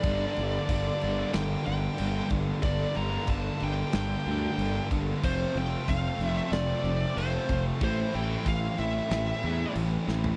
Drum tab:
CC |x-x-x-x-x-x-x-x-|x-x-x-x-x-x-x-x-|x-x-x-x-x-x-x-x-|x-x-x-x-x-x-x---|
SD |--------o-------|--------o-------|--------o-------|--------o-----o-|
FT |----------------|----------------|----------------|---------------o|
BD |o---o---------o-|o---o---------o-|o---o---------o-|o---o-----------|